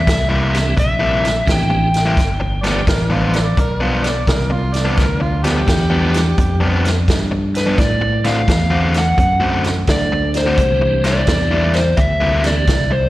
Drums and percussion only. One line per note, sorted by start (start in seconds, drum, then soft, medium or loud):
0.07 kick loud
0.07 snare loud
0.07 closed hi-hat loud
0.54 snare soft
0.54 closed hi-hat medium
0.77 kick medium
0.77 closed hi-hat medium
1.25 snare soft
1.25 closed hi-hat medium
1.47 kick medium
1.47 snare medium
1.47 closed hi-hat medium
1.94 snare soft
1.94 closed hi-hat medium
2.17 kick medium
2.17 snare soft
2.17 closed hi-hat medium
2.64 snare soft
2.64 closed hi-hat medium
2.87 kick medium
2.87 snare loud
2.87 closed hi-hat medium
3.34 snare soft
3.34 closed hi-hat medium
3.57 kick medium
3.57 closed hi-hat medium
4.04 snare soft
4.04 closed hi-hat medium
4.27 kick medium
4.27 snare loud
4.27 closed hi-hat medium
4.74 snare soft
4.74 closed hi-hat medium
4.97 kick medium
4.97 snare soft
4.97 closed hi-hat medium
5.44 snare soft
5.44 closed hi-hat medium
5.67 kick medium
5.67 snare loud
5.67 closed hi-hat medium
6.14 snare soft
6.14 closed hi-hat medium
6.38 kick medium
6.38 closed hi-hat medium
6.85 snare soft
6.85 closed hi-hat medium
7.08 kick medium
7.08 snare loud
7.08 closed hi-hat medium
7.55 snare soft
7.55 closed hi-hat medium
7.78 kick medium
7.78 snare soft
7.78 closed hi-hat medium
8.24 snare soft
8.24 closed hi-hat medium
8.48 kick medium
8.48 snare loud
8.48 closed hi-hat medium
8.94 snare soft
8.94 closed hi-hat medium
9.18 kick medium
9.18 closed hi-hat medium
9.64 snare soft
9.64 closed hi-hat medium
9.87 kick medium
9.87 snare medium
9.87 closed hi-hat medium
10.34 snare soft
10.34 closed hi-hat medium
10.57 kick medium
10.57 closed hi-hat medium
11.04 snare soft
11.04 closed hi-hat medium
11.27 kick medium
11.27 snare loud
11.27 closed hi-hat medium
11.74 snare soft
11.74 closed hi-hat medium
11.97 kick medium
11.97 closed hi-hat medium
12.44 snare soft
12.44 closed hi-hat medium
12.67 kick medium
12.67 snare medium
12.67 closed hi-hat medium